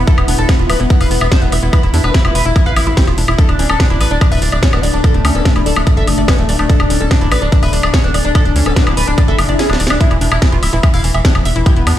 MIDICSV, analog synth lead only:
0, 0, Header, 1, 2, 480
1, 0, Start_track
1, 0, Tempo, 413793
1, 87, Time_signature, 4, 2, 24, 8
1, 13906, End_track
2, 0, Start_track
2, 0, Title_t, "Analog synth lead"
2, 0, Program_c, 0, 81
2, 86, Note_on_c, 0, 69, 98
2, 137, Note_off_c, 0, 69, 0
2, 206, Note_on_c, 0, 59, 68
2, 257, Note_off_c, 0, 59, 0
2, 327, Note_on_c, 0, 59, 62
2, 377, Note_off_c, 0, 59, 0
2, 446, Note_on_c, 0, 69, 96
2, 497, Note_off_c, 0, 69, 0
2, 567, Note_on_c, 0, 59, 67
2, 617, Note_off_c, 0, 59, 0
2, 687, Note_on_c, 0, 59, 66
2, 737, Note_off_c, 0, 59, 0
2, 807, Note_on_c, 0, 71, 97
2, 857, Note_off_c, 0, 71, 0
2, 927, Note_on_c, 0, 59, 66
2, 977, Note_off_c, 0, 59, 0
2, 1046, Note_on_c, 0, 59, 71
2, 1097, Note_off_c, 0, 59, 0
2, 1167, Note_on_c, 0, 71, 97
2, 1217, Note_off_c, 0, 71, 0
2, 1287, Note_on_c, 0, 59, 69
2, 1337, Note_off_c, 0, 59, 0
2, 1407, Note_on_c, 0, 59, 68
2, 1457, Note_off_c, 0, 59, 0
2, 1527, Note_on_c, 0, 72, 89
2, 1577, Note_off_c, 0, 72, 0
2, 1647, Note_on_c, 0, 59, 63
2, 1697, Note_off_c, 0, 59, 0
2, 1887, Note_on_c, 0, 59, 65
2, 1937, Note_off_c, 0, 59, 0
2, 2006, Note_on_c, 0, 71, 98
2, 2057, Note_off_c, 0, 71, 0
2, 2127, Note_on_c, 0, 64, 65
2, 2177, Note_off_c, 0, 64, 0
2, 2247, Note_on_c, 0, 64, 66
2, 2297, Note_off_c, 0, 64, 0
2, 2366, Note_on_c, 0, 71, 93
2, 2417, Note_off_c, 0, 71, 0
2, 2487, Note_on_c, 0, 64, 67
2, 2537, Note_off_c, 0, 64, 0
2, 2607, Note_on_c, 0, 64, 65
2, 2657, Note_off_c, 0, 64, 0
2, 2727, Note_on_c, 0, 71, 98
2, 2777, Note_off_c, 0, 71, 0
2, 2847, Note_on_c, 0, 64, 67
2, 2897, Note_off_c, 0, 64, 0
2, 2968, Note_on_c, 0, 64, 69
2, 3017, Note_off_c, 0, 64, 0
2, 3088, Note_on_c, 0, 71, 93
2, 3137, Note_off_c, 0, 71, 0
2, 3208, Note_on_c, 0, 64, 63
2, 3257, Note_off_c, 0, 64, 0
2, 3328, Note_on_c, 0, 64, 65
2, 3377, Note_off_c, 0, 64, 0
2, 3448, Note_on_c, 0, 67, 91
2, 3497, Note_off_c, 0, 67, 0
2, 3568, Note_on_c, 0, 64, 66
2, 3617, Note_off_c, 0, 64, 0
2, 3808, Note_on_c, 0, 64, 65
2, 3857, Note_off_c, 0, 64, 0
2, 3927, Note_on_c, 0, 69, 98
2, 3977, Note_off_c, 0, 69, 0
2, 4047, Note_on_c, 0, 62, 65
2, 4097, Note_off_c, 0, 62, 0
2, 4167, Note_on_c, 0, 62, 67
2, 4217, Note_off_c, 0, 62, 0
2, 4287, Note_on_c, 0, 69, 93
2, 4337, Note_off_c, 0, 69, 0
2, 4407, Note_on_c, 0, 62, 69
2, 4457, Note_off_c, 0, 62, 0
2, 4527, Note_on_c, 0, 62, 67
2, 4577, Note_off_c, 0, 62, 0
2, 4646, Note_on_c, 0, 71, 93
2, 4697, Note_off_c, 0, 71, 0
2, 4767, Note_on_c, 0, 62, 67
2, 4817, Note_off_c, 0, 62, 0
2, 4887, Note_on_c, 0, 62, 67
2, 4937, Note_off_c, 0, 62, 0
2, 5006, Note_on_c, 0, 71, 97
2, 5057, Note_off_c, 0, 71, 0
2, 5127, Note_on_c, 0, 62, 67
2, 5177, Note_off_c, 0, 62, 0
2, 5246, Note_on_c, 0, 62, 70
2, 5297, Note_off_c, 0, 62, 0
2, 5366, Note_on_c, 0, 73, 96
2, 5417, Note_off_c, 0, 73, 0
2, 5487, Note_on_c, 0, 62, 64
2, 5537, Note_off_c, 0, 62, 0
2, 5727, Note_on_c, 0, 62, 66
2, 5777, Note_off_c, 0, 62, 0
2, 5847, Note_on_c, 0, 69, 97
2, 5897, Note_off_c, 0, 69, 0
2, 5967, Note_on_c, 0, 57, 64
2, 6017, Note_off_c, 0, 57, 0
2, 6088, Note_on_c, 0, 57, 64
2, 6137, Note_off_c, 0, 57, 0
2, 6207, Note_on_c, 0, 69, 95
2, 6257, Note_off_c, 0, 69, 0
2, 6327, Note_on_c, 0, 57, 68
2, 6377, Note_off_c, 0, 57, 0
2, 6448, Note_on_c, 0, 57, 67
2, 6497, Note_off_c, 0, 57, 0
2, 6567, Note_on_c, 0, 69, 99
2, 6617, Note_off_c, 0, 69, 0
2, 6687, Note_on_c, 0, 57, 67
2, 6737, Note_off_c, 0, 57, 0
2, 6807, Note_on_c, 0, 57, 69
2, 6857, Note_off_c, 0, 57, 0
2, 6927, Note_on_c, 0, 69, 94
2, 6977, Note_off_c, 0, 69, 0
2, 7047, Note_on_c, 0, 57, 65
2, 7097, Note_off_c, 0, 57, 0
2, 7167, Note_on_c, 0, 57, 66
2, 7217, Note_off_c, 0, 57, 0
2, 7287, Note_on_c, 0, 71, 94
2, 7337, Note_off_c, 0, 71, 0
2, 7407, Note_on_c, 0, 57, 65
2, 7457, Note_off_c, 0, 57, 0
2, 7648, Note_on_c, 0, 57, 69
2, 7697, Note_off_c, 0, 57, 0
2, 7767, Note_on_c, 0, 69, 97
2, 7817, Note_off_c, 0, 69, 0
2, 7888, Note_on_c, 0, 62, 63
2, 7937, Note_off_c, 0, 62, 0
2, 8007, Note_on_c, 0, 62, 65
2, 8057, Note_off_c, 0, 62, 0
2, 8127, Note_on_c, 0, 69, 97
2, 8177, Note_off_c, 0, 69, 0
2, 8247, Note_on_c, 0, 62, 68
2, 8297, Note_off_c, 0, 62, 0
2, 8367, Note_on_c, 0, 62, 68
2, 8417, Note_off_c, 0, 62, 0
2, 8487, Note_on_c, 0, 71, 100
2, 8537, Note_off_c, 0, 71, 0
2, 8607, Note_on_c, 0, 62, 69
2, 8657, Note_off_c, 0, 62, 0
2, 8727, Note_on_c, 0, 62, 69
2, 8777, Note_off_c, 0, 62, 0
2, 8847, Note_on_c, 0, 71, 99
2, 8897, Note_off_c, 0, 71, 0
2, 8967, Note_on_c, 0, 62, 71
2, 9017, Note_off_c, 0, 62, 0
2, 9087, Note_on_c, 0, 62, 69
2, 9137, Note_off_c, 0, 62, 0
2, 9207, Note_on_c, 0, 73, 93
2, 9257, Note_off_c, 0, 73, 0
2, 9327, Note_on_c, 0, 62, 62
2, 9377, Note_off_c, 0, 62, 0
2, 9567, Note_on_c, 0, 62, 66
2, 9617, Note_off_c, 0, 62, 0
2, 9687, Note_on_c, 0, 69, 100
2, 9737, Note_off_c, 0, 69, 0
2, 9807, Note_on_c, 0, 62, 64
2, 9857, Note_off_c, 0, 62, 0
2, 9927, Note_on_c, 0, 62, 63
2, 9977, Note_off_c, 0, 62, 0
2, 10047, Note_on_c, 0, 69, 92
2, 10097, Note_off_c, 0, 69, 0
2, 10167, Note_on_c, 0, 62, 70
2, 10217, Note_off_c, 0, 62, 0
2, 10287, Note_on_c, 0, 62, 68
2, 10337, Note_off_c, 0, 62, 0
2, 10406, Note_on_c, 0, 71, 95
2, 10457, Note_off_c, 0, 71, 0
2, 10527, Note_on_c, 0, 62, 66
2, 10577, Note_off_c, 0, 62, 0
2, 10646, Note_on_c, 0, 62, 71
2, 10696, Note_off_c, 0, 62, 0
2, 10765, Note_on_c, 0, 69, 100
2, 10816, Note_off_c, 0, 69, 0
2, 10886, Note_on_c, 0, 62, 67
2, 10936, Note_off_c, 0, 62, 0
2, 11006, Note_on_c, 0, 62, 65
2, 11056, Note_off_c, 0, 62, 0
2, 11126, Note_on_c, 0, 68, 94
2, 11176, Note_off_c, 0, 68, 0
2, 11246, Note_on_c, 0, 62, 62
2, 11296, Note_off_c, 0, 62, 0
2, 11486, Note_on_c, 0, 62, 67
2, 11536, Note_off_c, 0, 62, 0
2, 11606, Note_on_c, 0, 64, 97
2, 11657, Note_off_c, 0, 64, 0
2, 11726, Note_on_c, 0, 52, 63
2, 11777, Note_off_c, 0, 52, 0
2, 11846, Note_on_c, 0, 52, 62
2, 11896, Note_off_c, 0, 52, 0
2, 11966, Note_on_c, 0, 64, 100
2, 12017, Note_off_c, 0, 64, 0
2, 12086, Note_on_c, 0, 52, 67
2, 12137, Note_off_c, 0, 52, 0
2, 12206, Note_on_c, 0, 52, 68
2, 12257, Note_off_c, 0, 52, 0
2, 12326, Note_on_c, 0, 64, 94
2, 12376, Note_off_c, 0, 64, 0
2, 12446, Note_on_c, 0, 52, 69
2, 12497, Note_off_c, 0, 52, 0
2, 12567, Note_on_c, 0, 52, 66
2, 12617, Note_off_c, 0, 52, 0
2, 12686, Note_on_c, 0, 64, 96
2, 12736, Note_off_c, 0, 64, 0
2, 12807, Note_on_c, 0, 52, 63
2, 12857, Note_off_c, 0, 52, 0
2, 12927, Note_on_c, 0, 52, 65
2, 12977, Note_off_c, 0, 52, 0
2, 13048, Note_on_c, 0, 67, 95
2, 13097, Note_off_c, 0, 67, 0
2, 13168, Note_on_c, 0, 52, 64
2, 13217, Note_off_c, 0, 52, 0
2, 13406, Note_on_c, 0, 52, 65
2, 13457, Note_off_c, 0, 52, 0
2, 13527, Note_on_c, 0, 67, 100
2, 13577, Note_off_c, 0, 67, 0
2, 13647, Note_on_c, 0, 59, 65
2, 13697, Note_off_c, 0, 59, 0
2, 13767, Note_on_c, 0, 59, 63
2, 13817, Note_off_c, 0, 59, 0
2, 13906, End_track
0, 0, End_of_file